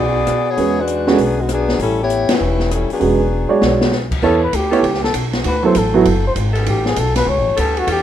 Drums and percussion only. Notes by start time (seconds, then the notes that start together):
0.27 cross-stick, closed hi-hat
0.58 open hi-hat
0.87 closed hi-hat
1.07 snare
1.18 open hi-hat
1.49 cross-stick, closed hi-hat
1.69 snare
1.79 open hi-hat
2.10 closed hi-hat
2.29 snare, ride
2.59 snare
2.71 cross-stick, closed hi-hat
2.90 open hi-hat
3.01 open hi-hat
3.62 snare
3.81 snare
3.92 snare
4.11 kick, crash
4.53 hi-hat pedal, ride
4.73 ride
4.84 ride
4.94 snare
5.04 snare
5.14 hi-hat pedal, ride
5.33 snare, ride
5.44 ride
5.75 hi-hat pedal, ride
6.05 ride
6.36 hi-hat pedal, ride
6.55 ride
6.66 ride
6.86 snare
6.96 hi-hat pedal, ride
7.16 snare, ride
7.57 hi-hat pedal, ride
7.77 ride
7.87 ride